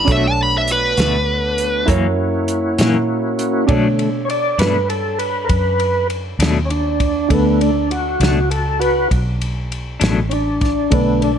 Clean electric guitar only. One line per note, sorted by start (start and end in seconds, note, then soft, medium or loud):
0.06 0.25 B2 medium
0.06 0.26 A3 medium
0.06 0.26 D4 medium
0.06 0.26 F#4 medium
0.98 1.17 B2 medium
0.98 1.17 A3 medium
0.98 1.16 D4 medium
0.98 1.16 F#4 medium
1.87 2.05 F#2 medium
1.87 2.06 E3 medium
1.87 2.06 A#3 medium
1.87 2.07 C#4 medium
2.79 2.97 F#2 medium
2.79 2.97 E3 medium
2.79 2.97 A#3 medium
2.79 2.96 C#4 medium
3.68 3.86 B2 medium
3.68 3.87 F#3 medium
3.68 3.87 A3 medium
3.68 3.88 D4 medium
4.58 4.78 B2 medium
4.58 4.77 F#3 soft
4.58 4.77 A3 medium
4.58 4.76 D4 medium
6.40 6.59 B2 medium
6.40 6.59 F#3 medium
6.40 6.58 A3 medium
6.40 6.58 D4 medium
8.21 8.40 B2 medium
8.21 8.40 F#3 medium
8.21 8.39 A3 medium
8.21 8.39 D4 medium
10.00 10.20 B2 medium
10.00 10.19 F#3 medium
10.00 10.19 A3 medium
10.00 10.19 D4 medium